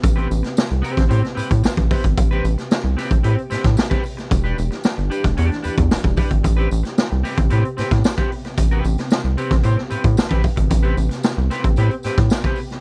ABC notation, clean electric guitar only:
X:1
M:4/4
L:1/16
Q:1/4=112
K:Am
V:1 name="Clean electric guitar"
z [CGB] z4 [CGB] z [CGc] z [CGB] z3 [CGB] z | z [CGB] z4 [CGB] z [CGB] z [CGB] z2 [CGB] z2 | z [DGB] z4 [DGB] z [DGd] z [DGB] z3 [DGB] z | z [CGB] z4 [CGB] z [CGB] z [CGB] z2 [CGB] z2 |
z [CGB] z4 [CGB] z [CGc] z [CGB] z2 [CGB] z2 | z [CGB] z4 [CGB] z [CGB] z [CGB] z2 [CGB] z2 |]